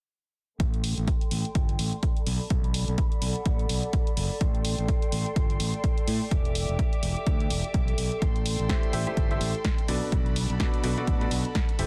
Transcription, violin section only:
0, 0, Header, 1, 2, 480
1, 0, Start_track
1, 0, Tempo, 476190
1, 604, Time_signature, 4, 2, 24, 8
1, 11961, End_track
2, 0, Start_track
2, 0, Title_t, "Violin section"
2, 0, Program_c, 0, 48
2, 604, Note_on_c, 0, 69, 76
2, 604, Note_on_c, 0, 79, 69
2, 604, Note_on_c, 0, 84, 81
2, 2267, Note_off_c, 0, 79, 0
2, 2267, Note_off_c, 0, 84, 0
2, 2284, Note_on_c, 0, 74, 67
2, 2284, Note_on_c, 0, 83, 81
2, 4422, Note_off_c, 0, 74, 0
2, 4422, Note_off_c, 0, 83, 0
2, 4444, Note_on_c, 0, 79, 67
2, 4444, Note_on_c, 0, 84, 84
2, 6324, Note_off_c, 0, 69, 0
2, 6345, Note_off_c, 0, 79, 0
2, 6345, Note_off_c, 0, 84, 0
2, 6364, Note_on_c, 0, 67, 72
2, 6364, Note_on_c, 0, 76, 69
2, 6364, Note_on_c, 0, 86, 83
2, 8265, Note_off_c, 0, 67, 0
2, 8265, Note_off_c, 0, 76, 0
2, 8265, Note_off_c, 0, 86, 0
2, 8284, Note_on_c, 0, 79, 67
2, 8285, Note_on_c, 0, 69, 79
2, 8285, Note_on_c, 0, 84, 85
2, 9947, Note_off_c, 0, 79, 0
2, 9948, Note_off_c, 0, 69, 0
2, 9948, Note_off_c, 0, 84, 0
2, 9963, Note_on_c, 0, 69, 75
2, 9963, Note_on_c, 0, 83, 81
2, 9964, Note_on_c, 0, 74, 67
2, 11961, Note_off_c, 0, 69, 0
2, 11961, Note_off_c, 0, 74, 0
2, 11961, Note_off_c, 0, 83, 0
2, 11961, End_track
0, 0, End_of_file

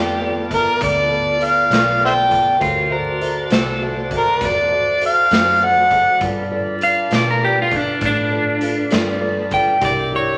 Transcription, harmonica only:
0, 0, Header, 1, 2, 480
1, 0, Start_track
1, 0, Tempo, 601202
1, 2090, Time_signature, 12, 3, 24, 8
1, 8286, End_track
2, 0, Start_track
2, 0, Title_t, "Harmonica"
2, 0, Program_c, 0, 22
2, 435, Note_on_c, 0, 70, 88
2, 655, Note_off_c, 0, 70, 0
2, 668, Note_on_c, 0, 74, 74
2, 1152, Note_on_c, 0, 77, 75
2, 1164, Note_off_c, 0, 74, 0
2, 1607, Note_off_c, 0, 77, 0
2, 1638, Note_on_c, 0, 72, 55
2, 1638, Note_on_c, 0, 76, 55
2, 1638, Note_on_c, 0, 79, 79
2, 1687, Note_off_c, 0, 76, 0
2, 1707, Note_off_c, 0, 72, 0
2, 2090, Note_off_c, 0, 79, 0
2, 3330, Note_on_c, 0, 70, 76
2, 3566, Note_on_c, 0, 74, 78
2, 3578, Note_off_c, 0, 70, 0
2, 4015, Note_off_c, 0, 74, 0
2, 4040, Note_on_c, 0, 77, 82
2, 4513, Note_on_c, 0, 78, 77
2, 4525, Note_off_c, 0, 77, 0
2, 4968, Note_off_c, 0, 78, 0
2, 8286, End_track
0, 0, End_of_file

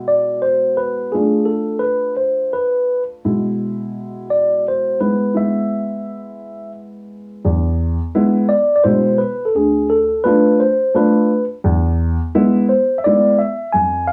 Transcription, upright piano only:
0, 0, Header, 1, 2, 480
1, 0, Start_track
1, 0, Tempo, 700117
1, 780, Time_signature, 3, 2, 24, 8
1, 9685, End_track
2, 0, Start_track
2, 0, Title_t, "Upright piano"
2, 0, Program_c, 0, 0
2, 0, Note_on_c, 0, 47, 57
2, 0, Note_on_c, 0, 56, 56
2, 0, Note_on_c, 0, 64, 63
2, 750, Note_off_c, 0, 47, 0
2, 752, Note_off_c, 0, 56, 0
2, 753, Note_off_c, 0, 64, 0
2, 783, Note_on_c, 0, 57, 47
2, 783, Note_on_c, 0, 65, 50
2, 785, Note_on_c, 0, 62, 46
2, 2196, Note_off_c, 0, 57, 0
2, 2196, Note_off_c, 0, 65, 0
2, 2197, Note_off_c, 0, 62, 0
2, 2224, Note_on_c, 0, 56, 58
2, 2225, Note_on_c, 0, 47, 51
2, 2225, Note_on_c, 0, 64, 67
2, 3400, Note_off_c, 0, 56, 0
2, 3401, Note_off_c, 0, 47, 0
2, 3401, Note_off_c, 0, 64, 0
2, 3428, Note_on_c, 0, 59, 45
2, 3429, Note_on_c, 0, 64, 46
2, 3430, Note_on_c, 0, 56, 49
2, 3652, Note_off_c, 0, 64, 0
2, 3655, Note_off_c, 0, 56, 0
2, 3655, Note_off_c, 0, 59, 0
2, 3662, Note_on_c, 0, 64, 54
2, 3665, Note_on_c, 0, 56, 49
2, 3665, Note_on_c, 0, 59, 46
2, 5076, Note_off_c, 0, 64, 0
2, 5078, Note_off_c, 0, 56, 0
2, 5078, Note_off_c, 0, 59, 0
2, 5106, Note_on_c, 0, 40, 64
2, 5462, Note_off_c, 0, 40, 0
2, 5586, Note_on_c, 0, 64, 81
2, 5587, Note_on_c, 0, 59, 69
2, 5589, Note_on_c, 0, 56, 74
2, 5825, Note_off_c, 0, 64, 0
2, 5826, Note_off_c, 0, 59, 0
2, 5827, Note_off_c, 0, 56, 0
2, 6065, Note_on_c, 0, 47, 56
2, 6065, Note_on_c, 0, 56, 66
2, 6065, Note_on_c, 0, 64, 69
2, 6304, Note_off_c, 0, 47, 0
2, 6305, Note_off_c, 0, 56, 0
2, 6305, Note_off_c, 0, 64, 0
2, 6547, Note_on_c, 0, 38, 51
2, 6902, Note_off_c, 0, 38, 0
2, 7026, Note_on_c, 0, 57, 62
2, 7028, Note_on_c, 0, 62, 57
2, 7028, Note_on_c, 0, 65, 73
2, 7265, Note_off_c, 0, 57, 0
2, 7266, Note_off_c, 0, 62, 0
2, 7266, Note_off_c, 0, 65, 0
2, 7501, Note_on_c, 0, 62, 57
2, 7503, Note_on_c, 0, 57, 58
2, 7505, Note_on_c, 0, 65, 63
2, 7742, Note_off_c, 0, 62, 0
2, 7743, Note_off_c, 0, 57, 0
2, 7744, Note_off_c, 0, 65, 0
2, 7981, Note_on_c, 0, 40, 70
2, 8338, Note_off_c, 0, 40, 0
2, 8466, Note_on_c, 0, 64, 87
2, 8467, Note_on_c, 0, 56, 74
2, 8469, Note_on_c, 0, 59, 75
2, 8703, Note_off_c, 0, 64, 0
2, 8704, Note_off_c, 0, 56, 0
2, 8704, Note_off_c, 0, 59, 0
2, 8953, Note_on_c, 0, 56, 60
2, 8953, Note_on_c, 0, 64, 74
2, 8959, Note_on_c, 0, 59, 57
2, 9186, Note_off_c, 0, 56, 0
2, 9186, Note_off_c, 0, 64, 0
2, 9189, Note_off_c, 0, 59, 0
2, 9420, Note_on_c, 0, 41, 56
2, 9685, Note_off_c, 0, 41, 0
2, 9685, End_track
0, 0, End_of_file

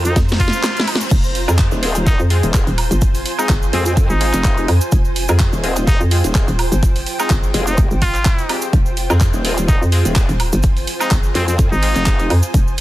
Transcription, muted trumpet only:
0, 0, Header, 1, 2, 480
1, 0, Start_track
1, 0, Key_signature, -4, "minor"
1, 0, Tempo, 476190
1, 1122, Time_signature, 4, 2, 24, 8
1, 12909, End_track
2, 0, Start_track
2, 0, Title_t, "Muted trumpet"
2, 0, Program_c, 0, 59
2, 53, Note_on_c, 0, 63, 91
2, 167, Note_off_c, 0, 63, 0
2, 402, Note_on_c, 0, 65, 95
2, 1078, Note_off_c, 0, 65, 0
2, 2082, Note_on_c, 0, 63, 93
2, 2217, Note_off_c, 0, 63, 0
2, 3413, Note_on_c, 0, 63, 92
2, 3527, Note_off_c, 0, 63, 0
2, 3762, Note_on_c, 0, 60, 91
2, 3846, Note_off_c, 0, 60, 0
2, 3893, Note_on_c, 0, 60, 75
2, 3963, Note_off_c, 0, 60, 0
2, 4133, Note_on_c, 0, 63, 99
2, 4801, Note_off_c, 0, 63, 0
2, 5922, Note_on_c, 0, 63, 97
2, 6057, Note_off_c, 0, 63, 0
2, 7253, Note_on_c, 0, 63, 89
2, 7367, Note_off_c, 0, 63, 0
2, 7732, Note_on_c, 0, 63, 90
2, 7847, Note_off_c, 0, 63, 0
2, 8081, Note_on_c, 0, 65, 98
2, 8758, Note_off_c, 0, 65, 0
2, 9761, Note_on_c, 0, 63, 91
2, 9897, Note_off_c, 0, 63, 0
2, 11092, Note_on_c, 0, 63, 94
2, 11207, Note_off_c, 0, 63, 0
2, 11442, Note_on_c, 0, 60, 91
2, 11525, Note_off_c, 0, 60, 0
2, 11572, Note_on_c, 0, 60, 78
2, 11642, Note_off_c, 0, 60, 0
2, 11812, Note_on_c, 0, 63, 98
2, 12480, Note_off_c, 0, 63, 0
2, 12909, End_track
0, 0, End_of_file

